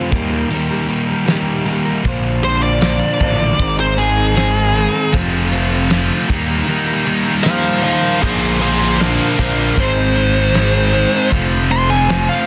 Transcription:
Already playing: F4 A4
0.11 D#2 D#3 G3 A#3 D#4 G4 A#4, kick, open hi-hat
0.30 G3 G4 A#4
0.50 D#3 G3 A#3 D#4 G4 A#4, open hi-hat
0.69 G3 G4 A#4
0.88 D#3 G3 A#3 D#4, open hi-hat
1.08 G3 G4 A#4
1.26 D#3 G3 A#3 D#4 G4, snare, open hi-hat
1.30 A#4
1.65 D#3 G3 A#3 D#4 G4, open hi-hat
1.69 A#4
1.85 G3 G4 A#4
2.03 A#1 A#2 D3 F3 A#3 D4 F4 C5, kick, open hi-hat
2.42 A#2 D3 F3 A#3 D4 F4 C5, open hi-hat
2.46 C5
2.61 D4 F4 C5 D5
2.80 A#2 D3 F3 A#3 D4 F4 C5, snare, open hi-hat
3.19 A1 A#2 D3 F3 A#3 D4 F4 C5, kick, open hi-hat
3.39 D4 F4 C5
3.58 G#1 G#2 D#3 G#3 C4 D#4 A#4, kick, open hi-hat
3.77 C4 D#4 A#4 C5
3.96 G#2 D#3 G#3 C4 D#4 G#4, open hi-hat
4.16 C4 D#4 A#4
4.35 G#2 D#3 G#3 C4 D#4 G#4 A#4, snare, open hi-hat
4.73 G#2 D#3 G#3 C4 D#4 A#4, open hi-hat
4.92 C4 D#4 A#4
5.11 F1 F2 C3 D3 F3 A3 C4 F4 A4, kick, open hi-hat
5.50 F2 C3 D3 F3 A3 C4 F4 A4, open hi-hat
5.69 C4 F4 A4
5.89 F2 C3 D3 F3 A3 C4 F4 A4, snare, open hi-hat
6.28 D#2 D#3 G3 A#3 D#4 G4 A#4, kick, open hi-hat
6.47 G3 G4 A#4
6.66 D#3 G3 A#3 D#4 G4 A#4, open hi-hat
6.86 G3 G4 A#4
7.06 D#3 G3 A#3 D#4, open hi-hat
7.25 G3 G4 A#4
7.44 D#3 G3 A#3 D#4 G4 A#4 C5 F5, snare, open hi-hat
7.82 D#3 G3 A#3 D#4 G4 A#4 C5 F5, open hi-hat
8.02 G3 G4 A#4
8.21 A#1 A#2 D3 F3 A#3 D4 F4 G#4 C5, kick, open hi-hat
8.59 A#2 D3 F3 A#3 D4 F4 G#4 C5, open hi-hat
8.63 C5
8.78 D4 F4 C5
8.98 A#2 D3 F3 A#3 D4 F4 A#4 C5, snare, open hi-hat
9.36 A#1 A#2 D3 F3 A#3 D4 F4 C5, kick, open hi-hat
9.41 A#4
9.56 D4 F4 C5
9.76 G#1 G#2 D#3 G#3 C4 D#4 A#4, kick, open hi-hat
9.80 C5
9.94 C4 D#4 A#4
10.16 G#2 D#3 G#3 C4 D#4, open hi-hat
10.34 C4 D#4 A#4
10.53 G#2 D#3 G#3 C4 D#4 A#4, snare, open hi-hat
10.91 G#2 D#3 G#3 C4 D#4 A#4, open hi-hat
11.11 C4 D#4 A#4
11.30 F1 F2 C3 D3 F3 A3 C4 F4 A4, kick, open hi-hat
11.69 F2 C3 D3 F3 A3 C4 F4 A4 C6, open hi-hat
11.88 C4 F4 A4 G#5
12.07 F2 C3 D3 F3 A3 C4 F4, snare, open hi-hat
12.11 A4
12.29 F5

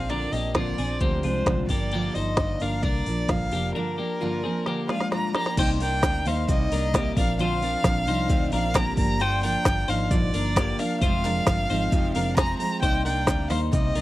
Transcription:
Already playing: A#1 F5
0.09 A#2 D3 F3 C4 D4 A#4 D5, closed hi-hat
0.31 A#1 F3 A#3 C4 D4 G4 D#5, open hi-hat
0.54 A#2 D3 F3 A#3 C4 D4 F4 D5, kick, snare, closed hi-hat
0.77 A#1 F3 C4 D4 G#4, open hi-hat
1.00 D2 D3 F3 A#3 C4 D4 G4 C5, kick, closed hi-hat
1.23 C2 F3 G#3 C4 D4 F4 C5, open hi-hat
1.46 C2 A#2 D3 F3 C4 D4, kick, snare, closed hi-hat
1.69 G1 A#3 D4 G4 D5, kick, open hi-hat
1.73 F3
1.92 G2 D3 F3 A#3 D4 G4, closed hi-hat
2.14 G1 F3 A#3 D4 D#4 C5 D#5, open hi-hat
2.37 G2 D3 F3 A#3 D4, kick, snare, closed hi-hat
2.60 G1 F3 A#3 D4 A#4 F5, open hi-hat
2.83 C2 D3 F3 A#3 D4 A#4 D5, kick, closed hi-hat
3.06 A#1 F3 A#3 D4, open hi-hat
3.29 A#1 G2 D3 F3 A#3 D4 F5, kick, snare, closed hi-hat
3.51 F1 F3 A#3 D4 G4, open hi-hat
3.75 G2 D3 F3 A#3 D4 A#4
3.98 F3 A#3 D4 G4
4.21 G2 D3 F3 A#3 D4 F4
4.44 F3 A#3 C4 D4 G#4
4.66 D3 F3 A#3 D4 G4, snare
4.89 F3 G#3 A#3 D4 F4 F5, snare
5.00 snare
5.12 G2 D3 F3 A#3 D4 A#5, snare
5.34 F3 A#3 D4 G4 A#5, snare
5.46 snare
5.57 C2 C3 G3 A#3 D#4 C5 G5, kick, open hi-hat, crash
5.79 G3 A#3 D4 D#4 A#4 G5, open hi-hat
6.02 D2 C3 G3 A#3 D#4, kick, snare, clap, open hi-hat
6.25 D#2 G3 A#3 D#4 C5 F5, open hi-hat
6.48 C2 C3 G3 A#3 D#4 D#5, kick, open hi-hat
6.71 C2 G3 A#3 D4 D#4 A#4, open hi-hat
6.93 C3 G3 A#3 D#4 G4, kick, snare, clap, open hi-hat
7.17 A#1 F3 C4 D4 A#4 F5, kick, open hi-hat
7.38 A#2 D3 F3 C4 D4 F4 C5 F5, open hi-hat
7.61 F3 C4 D4 A#4, open hi-hat
7.83 A#1 D3 F3 C4 D4, kick, snare, clap, open hi-hat
8.06 C2 F3 C4 D4 D#4 C5, open hi-hat
8.28 D2 A#2 D3 F3 C4 D4, kick, open hi-hat
8.51 A#1 F3 C4 D4 A#4 F5, open hi-hat
8.73 D3 F3 A#3 C4 D4 G4 A#5, kick, snare, clap, open hi-hat
8.97 G1 F3 A#3 D4 A#5, kick, open hi-hat
9.19 G2 D3 F3 A#3 D4 F4 C5 G5, open hi-hat
9.41 F3 A#3 D4 A#4 G5, open hi-hat
9.65 G1 D3 F3 A#3 D4, kick, snare, clap, open hi-hat
9.88 G#1 F3 A#3 D4 D#4 C5 F5, open hi-hat
10.11 A#1 G2 D3 F3 A#3 D4 D5, kick, open hi-hat
10.34 G1 F3 A#3 D4 A#4, open hi-hat
10.56 D3 F3 A#3 D4 G4, kick, snare, clap, open hi-hat
10.79 F3 A#3 D4 A#4 F5, open hi-hat
11.01 F1 F2 C3 F3 G#3 C4 F4 C5 F5, kick, open hi-hat
11.25 F3 G#3 C4 D4 A#4, clap, open hi-hat
11.46 G1 C3 F3 G#3 C4, kick, snare, clap, open hi-hat
11.70 G#1 F3 G#3 C4 D#4 C5, open hi-hat
11.91 F1 F2 C3 F3 G#3 C4, kick, open hi-hat
12.14 F1 F3 G#3 C4 D4 A#4 F5, open hi-hat
12.37 C3 F3 G#3 C4 G#4 A#5, kick, snare, clap, open hi-hat
12.59 F3 G#3 C4 A#5, open hi-hat
12.82 C2 C3 G3 A#3 D#4 C5 G5, kick, open hi-hat
13.05 G3 A#3 D4 D#4 A#4 G5, open hi-hat
13.27 D2 C3 G3 A#3 D#4, kick, snare, clap, open hi-hat
13.49 D#2 G3 A#3 D#4 C5 F5, open hi-hat
13.72 C2 C3 G3 A#3 D#4 D#5, kick, open hi-hat
13.95 C2 G3 A#3 D4 D#4 A#4, open hi-hat

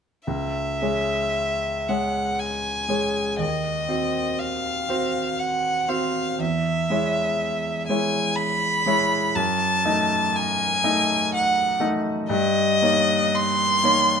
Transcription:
0.27 C#2 E5
0.82 G#3 G#4 C#5
1.89 G#3 G#4 C#5 F#5
2.39 G#5
2.88 G#3 G#4 C#5
3.38 D#2 D#5
3.88 C4 F#4 C5
4.39 F5
4.89 C4 F#4 C5
5.39 F#5
5.88 C4 F#4 C5 F5
6.38 E2 E5
6.90 G#3 E4 C#5
7.87 G#3 E4 C#5 G#5
8.36 B5
8.86 G#3 E4 C#5
9.35 F#2 A5
9.85 A3 D#4 D#5
10.35 G#5
10.84 A3 D#4 D#5
11.34 F#5
11.80 A3 D#4 D#5
12.29 G2 D#5
12.82 A#3 D#4 C#5
13.35 C6
13.83 A#3 D#4 C#5

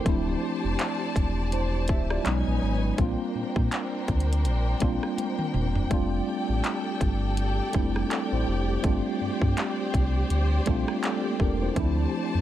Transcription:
Already playing: G4 C5
0.04 D1 F3 A3 C4 D4 D5 A5, kick, closed hi-hat
0.09 E4
0.64 F1
0.79 clap, closed hi-hat
1.16 E1, kick, closed hi-hat
1.52 E4 C5, closed hi-hat
1.88 D1 G4 E5, kick, closed hi-hat
2.10 F4 D5, cross-stick
2.24 B1 F#3 G#3 B3 C#4 D#4 B4 C#5 G#5, clap, closed hi-hat
2.28 D#4
2.47 A#1
2.63 G#1
2.97 A#1 G3 A#3 C4 D4 A#4 C5 G5, kick, closed hi-hat
3.01 F4
3.35 A#2
3.56 A#2, kick
3.72 clap, closed hi-hat
4.08 D2, kick, closed hi-hat
4.20 closed hi-hat
4.33 closed hi-hat
4.45 A#1, closed hi-hat
4.80 A#1 G3 A#3 C4 D4, kick, closed hi-hat
4.84 F4
5.03 cross-stick
5.18 closed hi-hat, high tom
5.39 mid tom
5.54 E1, mid tom
5.75 floor tom
5.89 F1 G3 A3 C4 D4 G4 A4 D5, kick, closed hi-hat
5.94 F4
6.49 A1
6.64 clap, closed hi-hat
7.01 G1, kick, closed hi-hat
7.37 closed hi-hat
7.73 F1 G3 A3 C4 D4, kick, closed hi-hat
7.77 E4
7.96 cross-stick
8.11 C4 A4, clap, closed hi-hat
8.32 A1 E4 C5
8.48 F1
8.69 G4
8.82 G1 G3 A3 C4 D4 C5, kick, closed hi-hat
8.87 F4
9.21 G2
9.42 G2, kick
9.57 clap, closed hi-hat
9.94 C2, kick, closed hi-hat
10.30 D2, closed hi-hat
10.66 A#1 G3 A3 C4 D4, kick, closed hi-hat
10.70 F4
10.88 cross-stick
11.04 C4 A4, clap, closed hi-hat
11.26 A#3 G4
11.40 E1 D4 A#4, kick
11.62 E4 C5
11.75 D2 F3 A3 C4 D4 C5 A5, kick, closed hi-hat
11.80 E4
12.34 F2

